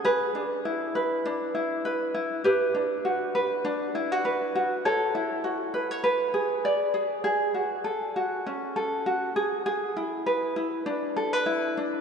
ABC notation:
X:1
M:4/4
L:1/16
Q:"Swing 16ths" 1/4=100
K:Emix
V:1 name="Ukulele"
[GB]2 D2 E2 B2 D2 E2 B2 E2 | [=GB]2 D2 F2 B2 D2 E F B2 F2 | [Ac]2 E2 F2 B c B2 G2 d2 G2 | G2 F2 A2 F2 C2 A2 F2 G2 |
G2 E2 B2 E2 D2 A B E2 D2 |]